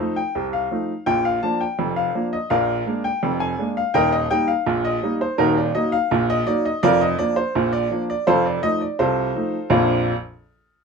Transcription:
0.00 0.19 F3 soft
0.00 0.19 A3 soft
0.00 0.19 D#4 medium
0.00 0.13 A4 medium
0.00 0.13 C5 medium
0.00 0.14 F5 medium
0.16 0.45 G5 medium
0.35 0.66 C2 medium
0.35 0.66 C3 medium
0.53 1.04 F5 medium
0.71 0.91 F3 soft
0.71 0.91 A3 soft
0.71 0.91 D#4 soft
1.06 1.37 A#1 medium
1.06 1.37 A#2 medium
1.06 1.25 G5 loud
1.25 1.43 F5 medium
1.43 1.63 F3 medium
1.43 1.63 A#3 soft
1.43 1.64 D4 medium
1.43 1.61 A5 medium
1.60 1.89 G5 medium
1.79 2.09 F1 medium
1.79 2.09 F2 medium
1.96 2.25 F5 medium
2.15 2.35 F3 soft
2.15 2.35 A#3 soft
2.15 2.35 D4 soft
2.33 2.51 D#5 medium
2.50 2.81 A#1 medium
2.50 2.81 A#2 medium
2.50 3.01 A#4 medium
2.50 3.01 D5 medium
2.50 2.93 F5 medium
2.86 3.06 G#3 soft
2.86 3.06 A#3 soft
2.86 3.07 D4 medium
3.04 3.39 G5 medium
3.23 3.53 F1 medium
3.23 3.53 F2 medium
3.40 3.69 G#5 medium
3.59 3.78 G#3 soft
3.59 3.79 A#3 soft
3.59 3.79 D4 soft
3.77 3.95 F5 medium
3.94 4.25 D#1 medium
3.94 4.25 D#2 medium
3.94 4.12 A#4 medium
3.94 4.11 D#5 medium
3.94 4.12 G5 loud
4.12 4.31 D#5 medium
4.31 4.51 G3 medium
4.31 4.51 A#3 medium
4.31 4.51 D#4 medium
4.31 4.49 G5 loud
4.48 4.77 F5 medium
4.66 4.97 A#1 medium
4.66 4.97 A#2 medium
4.85 5.13 D#5 medium
5.03 5.23 G3 soft
5.03 5.23 A#3 soft
5.03 5.23 D#4 medium
5.21 5.39 C5 medium
5.38 5.69 D#1 medium
5.38 5.69 D#2 medium
5.38 5.56 D#4 medium
5.38 5.56 F#4 medium
5.38 5.56 A#4 loud
5.57 5.75 D5 medium
5.75 5.95 F#3 soft
5.75 5.95 A#3 medium
5.75 5.95 D#4 medium
5.75 5.93 D#5 medium
5.92 6.27 F5 medium
6.11 6.42 A#1 medium
6.11 6.42 A#2 medium
6.30 6.47 D#5 loud
6.47 6.67 F#3 soft
6.47 6.67 A#3 soft
6.47 6.68 D#4 medium
6.47 6.65 D5 loud
6.65 6.83 D#5 medium
6.83 7.14 F1 medium
6.83 7.14 F2 loud
6.83 7.00 F4 medium
6.83 7.00 A#4 medium
6.83 7.01 D5 loud
7.01 7.19 D#5 medium
7.19 7.39 F3 medium
7.19 7.39 A#3 medium
7.19 7.40 D4 medium
7.19 7.37 D5 loud
7.36 7.71 C5 medium
7.55 7.86 A#1 medium
7.55 7.86 A#2 medium
7.73 8.02 D5 medium
7.91 8.11 F3 soft
7.91 8.11 A#3 soft
7.91 8.12 D4 medium
8.10 8.27 D5 medium
8.27 8.58 F1 medium
8.27 8.58 F2 medium
8.27 8.44 F4 medium
8.27 8.44 A4 medium
8.27 8.45 C5 loud
8.46 8.64 D5 medium
8.63 8.83 F3 soft
8.63 8.84 A3 soft
8.63 8.84 D#4 soft
8.63 8.81 D#5 loud
8.81 8.99 D5 medium
8.99 9.30 C2 medium
8.99 9.31 C3 medium
8.99 9.69 F4 medium
8.99 9.69 A4 medium
8.99 9.68 C5 medium
9.35 9.56 F3 soft
9.35 9.56 A3 soft
9.35 9.56 D#4 soft
9.70 10.11 A#1 loud
9.70 10.11 F2 medium
9.70 10.11 F3 medium
9.70 10.12 A#3 medium
9.70 10.12 D4 medium
9.70 10.12 F4 medium
9.70 10.12 D5 medium

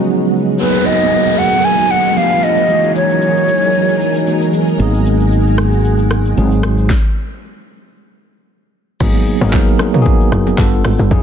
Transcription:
0.00 0.56 C#3 medium
0.00 0.61 F3 medium
0.00 0.57 F#3 medium
0.00 0.56 G#3 medium
0.00 0.61 G#3 medium
0.00 0.56 B3 medium
0.00 0.59 B3 medium
0.00 0.61 C#4 medium
0.00 0.26 D#4 loud
0.00 0.57 D#4 medium
0.00 0.60 F4 medium
0.00 0.56 F#4 medium
0.00 0.61 F#4 loud
0.00 0.61 G#4 loud
0.57 2.13 F#3 medium
0.57 2.15 G#3 medium
0.57 2.13 A#3 medium
0.57 2.14 B3 medium
0.57 2.15 D#4 medium
0.57 2.14 D#4 medium
0.57 2.15 F#4 medium
0.57 2.15 G#4 medium
0.57 2.15 A#4 medium
0.57 0.87 B4 medium
0.57 downlifter medium
0.57 shaker medium
0.73 shaker soft
0.85 1.40 D#5 loud
0.85 shaker medium
1.00 shaker soft
1.11 shaker medium
1.26 shaker medium
1.38 1.66 F#5 medium
1.38 shaker medium
1.52 shaker soft
1.64 1.92 G#5 loud
1.64 shaker medium
1.78 shaker medium
1.90 2.19 F#5 loud
1.90 shaker medium
2.05 shaker medium
2.16 2.69 F3 medium
2.16 2.69 G3 medium
2.16 2.69 A3 medium
2.16 2.69 B3 medium
2.16 2.69 D4 medium
2.16 2.70 D4 medium
2.16 2.69 F4 medium
2.16 2.70 G4 medium
2.16 2.69 A4 medium
2.16 2.69 B4 medium
2.16 2.45 F5 loud
2.16 shaker medium
2.31 shaker medium
2.43 2.95 D#5 medium
2.43 shaker medium
2.57 shaker soft
2.68 4.23 E3 medium
2.68 4.78 E3 medium
2.68 4.78 F#3 medium
2.68 4.24 G#3 medium
2.68 4.24 A#3 medium
2.68 4.78 C#4 medium
2.68 6.34 D#4 medium
2.68 4.25 D#4 medium
2.68 4.78 G#4 medium
2.68 6.34 A#4 medium
2.68 shaker medium
2.72 4.25 F#4 medium
2.84 shaker soft
2.95 4.50 C#5 loud
2.95 shaker loud
3.10 shaker soft
3.22 shaker medium
3.36 shaker medium
3.48 shaker medium
3.62 shaker soft
3.74 shaker medium
3.89 shaker medium
4.01 shaker medium
4.15 shaker medium
4.26 4.79 E3 medium
4.26 4.80 G#3 soft
4.26 4.78 A#3 medium
4.26 4.80 D#4 medium
4.26 4.35 F#4 soft
4.26 shaker medium
4.35 4.81 G#4 medium
4.42 shaker medium
4.53 shaker medium
4.68 shaker soft
4.78 6.34 G#1 medium
4.78 6.34 F#3 medium
4.78 6.88 G#3 medium
4.78 6.34 A#3 medium
4.78 6.35 B3 medium
4.78 6.35 D#4 medium
4.78 6.88 F#4 medium
4.78 6.36 G#4 medium
4.78 shaker medium
4.94 shaker soft
5.06 shaker medium
5.20 shaker medium
5.32 shaker medium
5.47 shaker medium
5.58 cross-stick medium
5.58 shaker medium
5.73 shaker soft
5.85 shaker medium
5.99 shaker medium
6.11 cross-stick medium
6.11 shaker medium
6.25 shaker soft
6.37 6.89 G#1 medium
6.37 6.90 F#3 medium
6.37 6.90 G#3 medium
6.37 6.89 C4 medium
6.37 6.90 C4 medium
6.37 6.91 D#4 medium
6.37 6.91 G#4 medium
6.37 shaker medium
6.52 shaker soft
6.63 cross-stick loud
6.63 shaker medium
6.78 shaker soft
6.90 kick loud
6.90 snare medium
9.00 9.36 G#1 loud
9.00 9.33 F#3 medium
9.00 9.33 A#3 medium
9.00 9.33 B3 medium
9.00 9.33 D#4 medium
9.00 9.34 G#4 loud
9.00 kick loud
9.00 crash loud
9.00 low conga medium
9.00 shaker medium
9.15 low bongo medium
9.15 shaker medium
9.27 shaker loud
9.41 9.75 G#1 medium
9.41 9.82 F#3 medium
9.41 9.82 A#3 medium
9.41 9.83 B3 medium
9.41 9.83 D#4 medium
9.41 9.48 G#4 medium
9.41 low bongo medium
9.41 shaker medium
9.49 9.86 A#4 loud
9.49 clap medium
9.49 high bongo medium
9.49 low conga medium
9.53 kick loud
9.53 shaker medium
9.68 shaker medium
9.79 cross-stick medium
9.79 low bongo medium
9.79 shaker medium
9.93 10.58 F#3 medium
9.93 10.58 A#3 medium
9.93 10.57 B3 medium
9.93 10.59 D#4 medium
9.93 10.00 F#4 medium
9.93 mid tom medium
9.93 shaker medium
10.02 10.62 G#4 loud
10.02 low conga medium
10.06 kick loud
10.06 shaker medium
10.20 shaker medium
10.32 10.55 F#1 loud
10.32 cross-stick medium
10.32 shaker medium
10.47 low bongo medium
10.47 shaker medium
10.58 10.81 G1 loud
10.58 11.01 G3 medium
10.58 11.02 B3 medium
10.58 11.02 D4 medium
10.58 11.02 F4 medium
10.58 11.02 A4 loud
10.58 kick medium
10.58 clap loud
10.58 high bongo medium
10.58 shaker medium
10.73 shaker medium
10.85 10.97 G#1 medium
10.85 cross-stick loud
10.85 open hi-hat medium
10.85 high bongo medium
10.85 shaker loud
10.99 11.10 G1 loud
10.99 high bongo soft
10.99 shaker medium
11.11 11.23 F#1 loud
11.11 11.23 F#3 medium
11.11 11.23 A#3 medium
11.11 11.23 D#4 medium
11.11 11.23 E4 medium
11.11 11.23 G#4 loud
11.11 kick loud
11.11 low conga medium
11.11 shaker medium

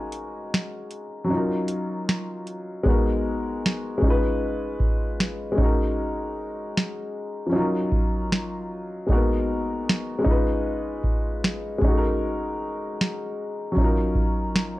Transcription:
0.00 1.23 G#3 medium
0.00 1.25 C#4 medium
0.00 1.26 D#4 medium
0.00 1.28 F#4 medium
0.00 1.29 A#4 medium
0.00 1.31 G#5 medium
0.12 closed hi-hat medium
0.54 snare loud
0.91 closed hi-hat medium
1.24 2.80 F#3 medium
1.24 2.81 C#4 medium
1.30 2.83 D#4 medium
1.30 2.84 F4 medium
1.37 2.86 A#4 medium
1.68 closed hi-hat medium
2.09 snare medium
2.47 closed hi-hat medium
2.83 3.96 G#3 medium
2.83 4.02 B3 medium
2.83 4.02 D#4 medium
2.83 kick medium
2.88 4.04 F#4 medium
2.88 4.04 A#4 medium
3.66 snare loud
3.98 5.50 G#3 medium
3.98 5.54 C#4 medium
4.02 5.56 D#4 medium
4.02 kick loud
4.07 5.57 F4 medium
4.07 5.59 B4 medium
4.80 kick medium
5.20 snare loud
5.52 7.46 G#3 medium
5.52 7.48 C#4 medium
5.58 7.49 D#4 medium
5.58 7.51 F#4 medium
5.58 kick loud
5.64 7.52 A#4 medium
6.77 snare loud
7.46 7.58 F3 medium
7.46 9.04 C#4 medium
7.53 9.06 F#3 medium
7.53 9.05 D#4 medium
7.53 9.07 F4 medium
7.59 9.09 A#4 medium
7.92 kick medium
8.32 snare loud
9.07 10.17 G#3 medium
9.07 9.16 A#3 soft
9.07 10.23 D#4 medium
9.07 kick loud
9.11 10.29 B3 medium
9.11 10.27 F#4 medium
9.11 10.28 A#4 medium
9.89 snare loud
10.19 11.75 G#3 medium
10.19 11.76 C#4 medium
10.24 11.78 D#4 medium
10.24 11.79 F4 medium
10.24 kick medium
10.31 11.81 B4 medium
11.04 kick medium
11.44 snare loud
11.78 13.71 G#3 medium
11.78 13.72 C#4 medium
11.78 kick loud
11.85 13.74 D#4 medium
11.85 13.76 F#4 medium
11.91 11.94 A4 medium
11.97 13.80 A#4 medium
13.01 snare medium
13.72 14.79 F#3 medium
13.72 14.79 C#4 medium
13.77 14.79 D#4 medium
13.77 kick medium
13.81 14.17 F4 medium
13.81 14.19 A#4 medium
14.15 kick medium
14.56 snare loud

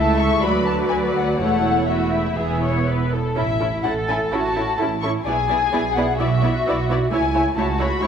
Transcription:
0.00 0.38 C#2 soft
0.00 0.39 C#2 soft
0.00 0.18 A3 soft
0.00 0.42 E4 medium
0.00 0.42 A4 medium
0.00 0.42 E5 medium
0.00 0.19 A5 medium
0.18 0.42 G#3 soft
0.18 0.43 C#6 medium
0.42 1.40 D2 soft
0.42 1.40 D2 medium
0.42 1.40 F#3 medium
0.42 1.40 F#4 soft
0.42 1.40 B4 soft
0.42 1.40 D5 medium
0.42 0.66 B5 medium
0.67 0.75 A5 medium
0.89 0.97 G#5 medium
1.15 1.38 F#5 soft
1.39 2.38 E1 soft
1.39 2.37 E2 soft
1.39 1.88 A3 soft
1.39 1.88 E4 soft
1.39 1.89 A4 soft
1.39 1.90 C#5 soft
1.39 1.88 F#5 medium
1.89 2.38 A3 soft
1.89 2.37 E4 soft
1.89 2.12 F#4 medium
1.89 2.88 E5 soft
2.13 2.39 E4 soft
2.37 3.15 E1 soft
2.37 3.14 E2 soft
2.37 3.15 B3 soft
2.37 3.14 E4 soft
2.37 2.63 G#4 medium
2.62 2.87 C#5 medium
2.87 3.12 B4 soft
3.11 3.36 A4 medium
3.35 3.80 A1 soft
3.35 3.43 C#4 soft
3.35 3.44 E4 soft
3.35 3.82 E4 soft
3.35 3.45 E4 soft
3.35 3.45 A4 soft
3.35 3.81 E5 medium
3.60 3.68 C#4 soft
3.60 3.68 E4 soft
3.60 3.68 A4 soft
3.84 4.28 A1 soft
3.84 3.92 C#4 soft
3.84 3.92 E4 soft
3.84 4.33 A4 medium
3.84 3.93 A4 soft
3.84 3.92 F#5 medium
4.08 4.16 C#4 soft
4.08 4.16 E4 soft
4.08 4.17 E4 soft
4.08 4.17 A4 soft
4.08 4.16 G#5 medium
4.32 4.75 A1 medium
4.32 4.40 C#4 soft
4.32 4.40 E4 soft
4.32 4.80 F#4 medium
4.32 4.40 A4 soft
4.32 5.01 A5 medium
4.55 4.65 C#4 soft
4.55 4.63 E4 soft
4.55 4.65 E4 soft
4.55 4.63 A4 soft
4.78 5.21 A1 soft
4.78 4.89 C#4 soft
4.78 4.87 E4 soft
4.78 4.89 E4 soft
4.78 5.27 E4 soft
4.78 4.86 A4 soft
5.02 5.12 C#4 soft
5.02 5.10 E4 soft
5.02 5.12 E4 soft
5.02 5.10 A4 soft
5.02 5.10 C#6 medium
5.26 5.68 B1 soft
5.26 5.35 B3 medium
5.26 5.34 E4 soft
5.26 5.36 E4 soft
5.26 6.18 G#4 medium
5.26 5.34 D5 soft
5.26 5.95 G#5 medium
5.49 5.58 B3 soft
5.49 5.57 E4 soft
5.49 5.58 E4 soft
5.49 5.57 D5 soft
5.73 6.14 B1 medium
5.73 5.81 B3 soft
5.73 5.81 E4 soft
5.73 5.81 D5 soft
5.96 6.05 B3 soft
5.96 6.04 E4 soft
5.96 6.05 E4 soft
5.96 6.04 D5 soft
5.96 6.19 F#5 medium
6.19 6.61 B1 medium
6.19 6.27 B3 soft
6.19 6.27 E4 soft
6.19 6.28 E4 soft
6.19 7.12 F#4 medium
6.19 6.28 D5 soft
6.19 6.88 E5 medium
6.42 6.50 B3 soft
6.42 6.50 E4 soft
6.42 6.51 E4 soft
6.42 6.51 D5 soft
6.66 7.07 B1 soft
6.66 6.74 B3 soft
6.66 6.74 E4 soft
6.66 6.76 E4 soft
6.66 6.76 D5 soft
6.89 6.97 B3 soft
6.89 6.97 E4 soft
6.89 6.98 E4 soft
6.89 6.99 D5 soft
7.11 7.53 C#2 soft
7.11 7.19 A3 soft
7.11 7.19 E4 soft
7.11 7.57 E4 medium
7.11 7.21 E4 soft
7.11 7.21 C#5 soft
7.11 7.54 G#5 medium
7.34 7.42 A3 soft
7.34 7.42 E4 soft
7.34 7.43 E4 soft
7.34 7.44 C#5 soft
7.56 7.98 C#2 medium
7.56 7.64 A3 soft
7.56 7.64 E4 soft
7.56 7.66 E4 soft
7.56 8.02 F#4 medium
7.56 7.65 C#5 soft
7.56 7.81 A5 medium
7.79 7.87 A3 soft
7.79 7.87 E4 soft
7.79 7.88 E4 soft
7.79 7.88 C#5 soft
7.79 8.04 B5 medium
8.01 8.07 C#2 medium
8.01 8.07 A3 medium
8.01 8.07 E4 medium
8.01 8.07 E4 soft
8.01 8.07 C#5 soft
8.01 8.07 C#6 medium

